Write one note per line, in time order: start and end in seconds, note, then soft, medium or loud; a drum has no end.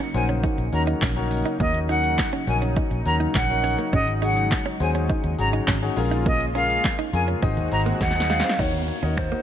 0.00 7.39 C#3 medium
0.00 5.93 F#3 medium
0.00 3.89 A#3 medium
0.00 0.12 C#4 medium
0.00 5.93 D#4 loud
0.00 closed hi-hat medium
0.00 shaker medium
0.14 0.45 A#1 loud
0.14 0.63 C#4 medium
0.14 0.63 D#4 medium
0.14 0.63 F#4 medium
0.14 0.63 A#4 medium
0.14 0.64 C5 medium
0.14 0.24 G#5 medium
0.14 muted clean electric guitar stroke soft
0.14 open hi-hat medium
0.14 shaker medium
0.29 0.41 C#4 medium
0.29 closed hi-hat medium
0.29 shaker medium
0.44 0.55 D#4 medium
0.44 kick loud
0.44 closed hi-hat medium
0.44 shaker medium
0.58 0.68 A#1 medium
0.58 muted clean electric guitar stroke soft
0.58 closed hi-hat medium
0.58 shaker medium
0.73 0.93 D#2 loud
0.73 1.09 C#4 medium
0.73 1.09 D#4 medium
0.73 1.09 F#4 medium
0.73 1.10 A#4 medium
0.73 1.10 C#5 medium
0.73 0.82 A#5 medium
0.73 open hi-hat medium
0.73 shaker medium
0.87 0.99 D#4 medium
0.87 closed hi-hat medium
0.87 shaker medium
1.02 1.42 A#1 loud
1.02 1.14 C#4 medium
1.02 kick loud
1.02 snare medium
1.02 clap loud
1.02 closed hi-hat medium
1.02 shaker medium
1.16 1.53 C#4 loud
1.16 1.53 D#4 medium
1.16 1.53 F#4 medium
1.16 1.53 A#4 medium
1.16 1.53 C#5 loud
1.16 closed hi-hat soft
1.16 shaker soft
1.31 muted clean electric guitar stroke soft
1.31 open hi-hat medium
1.31 shaker medium
1.46 1.57 D#4 medium
1.46 closed hi-hat medium
1.46 shaker medium
1.60 2.21 D#2 loud
1.60 1.72 A#3 medium
1.60 1.84 C#4 medium
1.60 1.85 D#4 medium
1.60 1.85 F#4 medium
1.60 1.85 A#4 medium
1.60 1.85 C#5 medium
1.60 1.79 D#5 loud
1.60 kick loud
1.60 closed hi-hat medium
1.60 shaker medium
1.74 closed hi-hat medium
1.74 shaker medium
1.89 2.38 C#4 medium
1.89 2.38 D#4 medium
1.89 2.01 D#4 medium
1.89 2.38 F#4 medium
1.89 2.38 A#4 medium
1.89 2.38 C#5 medium
1.89 2.30 F#5 medium
1.89 open hi-hat medium
1.89 shaker medium
2.04 muted clean electric guitar stroke soft
2.04 closed hi-hat medium
2.04 shaker medium
2.18 kick loud
2.18 snare medium
2.18 clap loud
2.18 closed hi-hat medium
2.18 shaker medium
2.33 2.45 C#4 medium
2.33 closed hi-hat medium
2.33 shaker medium
2.47 2.78 A#1 loud
2.47 2.96 C#4 medium
2.47 2.96 D#4 medium
2.47 2.96 F#4 medium
2.47 2.96 A#4 medium
2.47 2.97 C#5 medium
2.47 2.57 G#5 medium
2.47 muted clean electric guitar stroke soft
2.47 open hi-hat medium
2.47 shaker medium
2.62 2.74 C#4 medium
2.62 closed hi-hat medium
2.62 shaker medium
2.76 2.88 D#4 medium
2.76 kick loud
2.76 closed hi-hat medium
2.76 shaker medium
2.91 3.01 A#1 medium
2.91 muted clean electric guitar stroke soft
2.91 closed hi-hat medium
2.91 shaker medium
3.06 3.26 D#2 loud
3.06 3.42 C#4 medium
3.06 3.42 D#4 medium
3.06 3.42 F#4 medium
3.06 3.43 A#4 medium
3.06 3.43 C#5 medium
3.06 3.15 A#5 medium
3.06 open hi-hat medium
3.06 shaker medium
3.20 3.32 D#4 medium
3.20 closed hi-hat medium
3.20 shaker medium
3.35 3.75 A#1 medium
3.35 3.76 F#5 medium
3.35 muted clean electric guitar stroke soft
3.35 kick loud
3.35 snare medium
3.35 clap loud
3.35 closed hi-hat medium
3.35 shaker medium
3.49 3.86 C#4 medium
3.49 3.86 D#4 medium
3.49 3.86 F#4 medium
3.49 3.86 A#4 medium
3.49 3.86 C#5 medium
3.49 closed hi-hat soft
3.49 shaker soft
3.64 3.76 C#4 medium
3.64 open hi-hat medium
3.64 shaker medium
3.79 3.90 A#3 medium
3.79 closed hi-hat medium
3.79 shaker medium
3.93 4.54 G#1 loud
3.93 7.39 G#3 medium
3.93 4.17 C#4 medium
3.93 4.05 C#4 medium
3.93 4.17 D#4 medium
3.93 4.18 F#4 medium
3.93 4.18 G#4 medium
3.93 4.18 C#5 medium
3.93 4.12 D#5 loud
3.93 kick loud
3.93 closed hi-hat medium
3.93 shaker medium
4.07 closed hi-hat medium
4.07 shaker medium
4.22 4.71 C#4 medium
4.22 4.71 D#4 medium
4.22 4.34 D#4 medium
4.22 4.71 F#4 medium
4.22 4.71 G#4 medium
4.22 4.71 C#5 medium
4.22 4.63 F#5 medium
4.22 open hi-hat medium
4.22 shaker medium
4.37 muted clean electric guitar stroke soft
4.37 closed hi-hat medium
4.37 shaker medium
4.51 kick loud
4.51 snare medium
4.51 clap loud
4.51 closed hi-hat medium
4.51 shaker medium
4.66 4.78 C#4 medium
4.66 closed hi-hat medium
4.66 shaker medium
4.80 5.11 D#2 loud
4.80 5.29 C#4 medium
4.80 5.29 D#4 medium
4.80 5.29 F#4 medium
4.80 5.29 G#4 medium
4.80 5.30 C5 medium
4.80 4.90 G#5 medium
4.80 muted clean electric guitar stroke soft
4.80 open hi-hat medium
4.80 shaker medium
4.95 5.07 C#4 medium
4.95 closed hi-hat medium
4.95 shaker medium
5.09 5.21 D#4 medium
5.09 kick loud
5.09 closed hi-hat medium
5.09 shaker medium
5.24 5.34 D#2 medium
5.24 muted clean electric guitar stroke soft
5.24 closed hi-hat medium
5.24 shaker medium
5.38 5.59 G#1 loud
5.38 5.75 C#4 medium
5.38 5.75 D#4 medium
5.38 5.75 F#4 medium
5.38 5.75 G#4 medium
5.38 5.76 C#5 medium
5.38 5.48 A#5 medium
5.38 open hi-hat medium
5.38 shaker medium
5.53 5.65 D#4 medium
5.53 closed hi-hat medium
5.53 shaker medium
5.68 5.88 G#1 loud
5.68 5.80 C#4 medium
5.68 kick loud
5.68 snare medium
5.68 clap loud
5.68 closed hi-hat medium
5.68 shaker medium
5.82 5.95 C#4 medium
5.82 5.97 D#4 medium
5.82 5.97 F#4 medium
5.82 5.96 G#4 medium
5.82 5.96 C#5 loud
5.82 closed hi-hat soft
5.82 shaker soft
5.97 6.78 A#1 loud
5.97 7.41 A#3 medium
5.97 6.46 C#4 loud
5.97 6.46 F4 medium
5.97 7.41 F4 medium
5.97 6.46 G#4 medium
5.97 6.46 A#4 medium
5.97 6.46 C#5 loud
5.97 muted clean electric guitar stroke soft
5.97 open hi-hat medium
5.97 shaker medium
6.11 6.23 D#4 medium
6.11 closed hi-hat medium
6.11 shaker medium
6.26 6.38 A#3 medium
6.26 6.45 D#5 loud
6.26 kick loud
6.26 closed hi-hat medium
6.26 shaker medium
6.40 closed hi-hat medium
6.40 shaker medium
6.55 7.04 C#4 medium
6.55 6.67 C#4 medium
6.55 7.04 F4 medium
6.55 7.04 G#4 medium
6.55 7.04 A#4 medium
6.55 7.04 C#5 medium
6.55 6.96 F5 medium
6.55 open hi-hat medium
6.55 shaker medium
6.70 muted clean electric guitar stroke soft
6.70 closed hi-hat medium
6.70 shaker medium
6.84 kick loud
6.84 snare medium
6.84 clap loud
6.84 closed hi-hat medium
6.84 shaker medium
6.99 7.11 D#4 medium
6.99 closed hi-hat medium
6.99 shaker medium
7.13 7.34 F2 loud
7.13 7.42 C#4 medium
7.13 7.43 F4 medium
7.13 7.41 G#4 medium
7.13 7.43 A#4 medium
7.13 7.43 C#5 medium
7.13 7.23 G#5 medium
7.13 muted clean electric guitar stroke soft
7.13 open hi-hat medium
7.13 shaker medium
7.28 7.40 C#4 medium
7.28 closed hi-hat medium
7.28 shaker medium
7.42 7.59 G#1 loud
7.42 8.58 D#3 medium
7.42 8.58 G#3 medium
7.42 7.54 C4 medium
7.42 8.58 C4 medium
7.42 7.67 D#4 loud
7.42 7.67 F#4 medium
7.42 8.58 F#4 medium
7.42 7.67 G#4 medium
7.42 7.67 C5 medium
7.42 7.67 D#5 loud
7.42 kick loud
7.42 closed hi-hat medium
7.42 shaker medium
7.57 7.67 D#2 medium
7.57 muted clean electric guitar stroke soft
7.57 closed hi-hat medium
7.57 shaker medium
7.72 7.92 G#1 medium
7.72 8.08 D#4 medium
7.72 8.08 F#4 medium
7.72 8.08 G#4 medium
7.72 8.09 C5 medium
7.72 8.09 D#5 medium
7.72 7.81 A#5 medium
7.72 open hi-hat medium
7.72 shaker medium
7.86 7.98 A#3 medium
7.86 closed hi-hat medium
7.86 shaker medium
8.01 8.41 D#2 loud
8.01 8.42 F#5 medium
8.01 muted clean electric guitar stroke soft
8.01 kick loud
8.01 snare medium
8.01 closed hi-hat medium
8.01 shaker medium
8.11 snare medium
8.15 8.52 D#4 medium
8.15 8.52 F#4 medium
8.15 8.52 G#4 medium
8.15 8.52 C5 medium
8.15 8.52 D#5 medium
8.15 closed hi-hat soft
8.15 shaker soft
8.20 snare medium
8.30 8.42 G#3 medium
8.30 8.61 F5 loud
8.30 snare medium
8.30 open hi-hat medium
8.30 shaker medium
8.40 snare loud
8.44 8.56 C4 medium
8.44 closed hi-hat medium
8.44 shaker medium
8.49 snare loud
8.59 8.89 D#2 loud
8.59 8.96 D#4 medium
8.59 8.71 D#4 medium
8.59 8.96 F#4 medium
8.59 8.96 A#4 medium
8.59 8.88 C#5 loud
8.59 8.96 C#5 medium
8.59 kick loud
8.59 downlifter medium
8.88 9.19 C#5 medium
8.88 muted clean electric guitar stroke soft
9.02 9.33 D#2 medium
9.02 9.15 C#4 medium
9.02 9.27 D#4 medium
9.02 9.27 F#4 medium
9.02 9.27 A#4 medium
9.02 9.27 D#5 medium
9.17 9.42 C5 loud
9.17 finger snap loud
9.17 muted clean electric guitar stroke soft
9.17 kick loud
9.32 9.42 A#3 medium
9.32 9.42 D#4 medium
9.32 9.42 F#4 medium
9.32 9.42 A#4 medium
9.32 9.42 D#5 medium